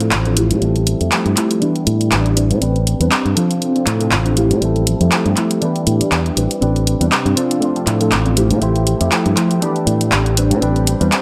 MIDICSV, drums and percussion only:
0, 0, Header, 1, 2, 480
1, 0, Start_track
1, 0, Key_signature, 0, "minor"
1, 0, Tempo, 500000
1, 595, Time_signature, 4, 2, 24, 8
1, 10770, End_track
2, 0, Start_track
2, 0, Title_t, "Drums"
2, 4, Note_on_c, 9, 42, 49
2, 100, Note_off_c, 9, 42, 0
2, 110, Note_on_c, 9, 39, 112
2, 112, Note_on_c, 9, 42, 47
2, 206, Note_off_c, 9, 39, 0
2, 208, Note_off_c, 9, 42, 0
2, 245, Note_on_c, 9, 42, 25
2, 341, Note_off_c, 9, 42, 0
2, 352, Note_on_c, 9, 42, 87
2, 448, Note_off_c, 9, 42, 0
2, 486, Note_on_c, 9, 42, 49
2, 582, Note_off_c, 9, 42, 0
2, 593, Note_on_c, 9, 42, 47
2, 689, Note_off_c, 9, 42, 0
2, 726, Note_on_c, 9, 42, 23
2, 822, Note_off_c, 9, 42, 0
2, 833, Note_on_c, 9, 42, 82
2, 929, Note_off_c, 9, 42, 0
2, 967, Note_on_c, 9, 42, 45
2, 1063, Note_off_c, 9, 42, 0
2, 1073, Note_on_c, 9, 39, 113
2, 1075, Note_on_c, 9, 42, 48
2, 1169, Note_off_c, 9, 39, 0
2, 1171, Note_off_c, 9, 42, 0
2, 1207, Note_on_c, 9, 42, 24
2, 1303, Note_off_c, 9, 42, 0
2, 1313, Note_on_c, 9, 39, 57
2, 1314, Note_on_c, 9, 42, 84
2, 1409, Note_off_c, 9, 39, 0
2, 1410, Note_off_c, 9, 42, 0
2, 1447, Note_on_c, 9, 42, 46
2, 1543, Note_off_c, 9, 42, 0
2, 1553, Note_on_c, 9, 42, 47
2, 1649, Note_off_c, 9, 42, 0
2, 1686, Note_on_c, 9, 42, 23
2, 1782, Note_off_c, 9, 42, 0
2, 1793, Note_on_c, 9, 42, 84
2, 1889, Note_off_c, 9, 42, 0
2, 1928, Note_on_c, 9, 42, 49
2, 2024, Note_off_c, 9, 42, 0
2, 2032, Note_on_c, 9, 39, 109
2, 2034, Note_on_c, 9, 42, 46
2, 2128, Note_off_c, 9, 39, 0
2, 2130, Note_off_c, 9, 42, 0
2, 2168, Note_on_c, 9, 42, 23
2, 2264, Note_off_c, 9, 42, 0
2, 2273, Note_on_c, 9, 42, 86
2, 2369, Note_off_c, 9, 42, 0
2, 2406, Note_on_c, 9, 42, 49
2, 2502, Note_off_c, 9, 42, 0
2, 2512, Note_on_c, 9, 42, 47
2, 2608, Note_off_c, 9, 42, 0
2, 2648, Note_on_c, 9, 42, 22
2, 2744, Note_off_c, 9, 42, 0
2, 2755, Note_on_c, 9, 42, 81
2, 2851, Note_off_c, 9, 42, 0
2, 2886, Note_on_c, 9, 42, 45
2, 2982, Note_off_c, 9, 42, 0
2, 2991, Note_on_c, 9, 39, 108
2, 2993, Note_on_c, 9, 42, 47
2, 3087, Note_off_c, 9, 39, 0
2, 3089, Note_off_c, 9, 42, 0
2, 3127, Note_on_c, 9, 42, 22
2, 3223, Note_off_c, 9, 42, 0
2, 3233, Note_on_c, 9, 42, 79
2, 3329, Note_off_c, 9, 42, 0
2, 3366, Note_on_c, 9, 42, 44
2, 3462, Note_off_c, 9, 42, 0
2, 3474, Note_on_c, 9, 42, 44
2, 3570, Note_off_c, 9, 42, 0
2, 3607, Note_on_c, 9, 42, 23
2, 3703, Note_off_c, 9, 42, 0
2, 3711, Note_on_c, 9, 39, 56
2, 3713, Note_on_c, 9, 42, 82
2, 3807, Note_off_c, 9, 39, 0
2, 3809, Note_off_c, 9, 42, 0
2, 3846, Note_on_c, 9, 42, 47
2, 3942, Note_off_c, 9, 42, 0
2, 3951, Note_on_c, 9, 39, 107
2, 3953, Note_on_c, 9, 42, 46
2, 4047, Note_off_c, 9, 39, 0
2, 4049, Note_off_c, 9, 42, 0
2, 4087, Note_on_c, 9, 42, 23
2, 4183, Note_off_c, 9, 42, 0
2, 4193, Note_on_c, 9, 42, 82
2, 4289, Note_off_c, 9, 42, 0
2, 4328, Note_on_c, 9, 42, 47
2, 4424, Note_off_c, 9, 42, 0
2, 4434, Note_on_c, 9, 42, 45
2, 4530, Note_off_c, 9, 42, 0
2, 4568, Note_on_c, 9, 42, 22
2, 4664, Note_off_c, 9, 42, 0
2, 4674, Note_on_c, 9, 42, 78
2, 4770, Note_off_c, 9, 42, 0
2, 4807, Note_on_c, 9, 42, 42
2, 4903, Note_off_c, 9, 42, 0
2, 4912, Note_on_c, 9, 39, 109
2, 4914, Note_on_c, 9, 42, 45
2, 5008, Note_off_c, 9, 39, 0
2, 5010, Note_off_c, 9, 42, 0
2, 5046, Note_on_c, 9, 42, 22
2, 5142, Note_off_c, 9, 42, 0
2, 5151, Note_on_c, 9, 39, 55
2, 5153, Note_on_c, 9, 42, 79
2, 5247, Note_off_c, 9, 39, 0
2, 5249, Note_off_c, 9, 42, 0
2, 5287, Note_on_c, 9, 42, 44
2, 5383, Note_off_c, 9, 42, 0
2, 5392, Note_on_c, 9, 42, 44
2, 5488, Note_off_c, 9, 42, 0
2, 5526, Note_on_c, 9, 42, 21
2, 5622, Note_off_c, 9, 42, 0
2, 5633, Note_on_c, 9, 42, 81
2, 5729, Note_off_c, 9, 42, 0
2, 5768, Note_on_c, 9, 42, 45
2, 5864, Note_off_c, 9, 42, 0
2, 5874, Note_on_c, 9, 39, 108
2, 5876, Note_on_c, 9, 42, 44
2, 5970, Note_off_c, 9, 39, 0
2, 5972, Note_off_c, 9, 42, 0
2, 6009, Note_on_c, 9, 42, 22
2, 6105, Note_off_c, 9, 42, 0
2, 6115, Note_on_c, 9, 42, 81
2, 6211, Note_off_c, 9, 42, 0
2, 6248, Note_on_c, 9, 42, 46
2, 6344, Note_off_c, 9, 42, 0
2, 6356, Note_on_c, 9, 42, 46
2, 6452, Note_off_c, 9, 42, 0
2, 6490, Note_on_c, 9, 42, 22
2, 6586, Note_off_c, 9, 42, 0
2, 6596, Note_on_c, 9, 42, 75
2, 6692, Note_off_c, 9, 42, 0
2, 6730, Note_on_c, 9, 42, 44
2, 6826, Note_off_c, 9, 42, 0
2, 6835, Note_on_c, 9, 39, 103
2, 6836, Note_on_c, 9, 42, 47
2, 6931, Note_off_c, 9, 39, 0
2, 6932, Note_off_c, 9, 42, 0
2, 6970, Note_on_c, 9, 42, 22
2, 7066, Note_off_c, 9, 42, 0
2, 7076, Note_on_c, 9, 42, 79
2, 7172, Note_off_c, 9, 42, 0
2, 7210, Note_on_c, 9, 42, 45
2, 7306, Note_off_c, 9, 42, 0
2, 7316, Note_on_c, 9, 42, 44
2, 7412, Note_off_c, 9, 42, 0
2, 7450, Note_on_c, 9, 42, 22
2, 7546, Note_off_c, 9, 42, 0
2, 7555, Note_on_c, 9, 39, 54
2, 7556, Note_on_c, 9, 42, 81
2, 7651, Note_off_c, 9, 39, 0
2, 7652, Note_off_c, 9, 42, 0
2, 7687, Note_on_c, 9, 42, 45
2, 7783, Note_off_c, 9, 42, 0
2, 7793, Note_on_c, 9, 39, 104
2, 7794, Note_on_c, 9, 42, 45
2, 7889, Note_off_c, 9, 39, 0
2, 7890, Note_off_c, 9, 42, 0
2, 7927, Note_on_c, 9, 42, 23
2, 8023, Note_off_c, 9, 42, 0
2, 8034, Note_on_c, 9, 42, 81
2, 8130, Note_off_c, 9, 42, 0
2, 8166, Note_on_c, 9, 42, 47
2, 8262, Note_off_c, 9, 42, 0
2, 8272, Note_on_c, 9, 42, 48
2, 8368, Note_off_c, 9, 42, 0
2, 8406, Note_on_c, 9, 42, 23
2, 8502, Note_off_c, 9, 42, 0
2, 8513, Note_on_c, 9, 42, 79
2, 8609, Note_off_c, 9, 42, 0
2, 8647, Note_on_c, 9, 42, 46
2, 8743, Note_off_c, 9, 42, 0
2, 8753, Note_on_c, 9, 39, 105
2, 8754, Note_on_c, 9, 42, 48
2, 8849, Note_off_c, 9, 39, 0
2, 8850, Note_off_c, 9, 42, 0
2, 8887, Note_on_c, 9, 42, 24
2, 8983, Note_off_c, 9, 42, 0
2, 8993, Note_on_c, 9, 39, 55
2, 8995, Note_on_c, 9, 42, 84
2, 9089, Note_off_c, 9, 39, 0
2, 9091, Note_off_c, 9, 42, 0
2, 9127, Note_on_c, 9, 42, 46
2, 9223, Note_off_c, 9, 42, 0
2, 9237, Note_on_c, 9, 42, 47
2, 9333, Note_off_c, 9, 42, 0
2, 9368, Note_on_c, 9, 42, 23
2, 9464, Note_off_c, 9, 42, 0
2, 9475, Note_on_c, 9, 42, 83
2, 9571, Note_off_c, 9, 42, 0
2, 9609, Note_on_c, 9, 42, 48
2, 9705, Note_off_c, 9, 42, 0
2, 9714, Note_on_c, 9, 39, 104
2, 9716, Note_on_c, 9, 42, 48
2, 9810, Note_off_c, 9, 39, 0
2, 9812, Note_off_c, 9, 42, 0
2, 9851, Note_on_c, 9, 42, 24
2, 9947, Note_off_c, 9, 42, 0
2, 9957, Note_on_c, 9, 42, 85
2, 10053, Note_off_c, 9, 42, 0
2, 10092, Note_on_c, 9, 42, 50
2, 10188, Note_off_c, 9, 42, 0
2, 10197, Note_on_c, 9, 42, 49
2, 10293, Note_off_c, 9, 42, 0
2, 10330, Note_on_c, 9, 42, 24
2, 10426, Note_off_c, 9, 42, 0
2, 10437, Note_on_c, 9, 42, 84
2, 10533, Note_off_c, 9, 42, 0
2, 10570, Note_on_c, 9, 42, 48
2, 10666, Note_off_c, 9, 42, 0
2, 10676, Note_on_c, 9, 39, 108
2, 10678, Note_on_c, 9, 42, 49
2, 10770, Note_off_c, 9, 39, 0
2, 10770, Note_off_c, 9, 42, 0
2, 10770, End_track
0, 0, End_of_file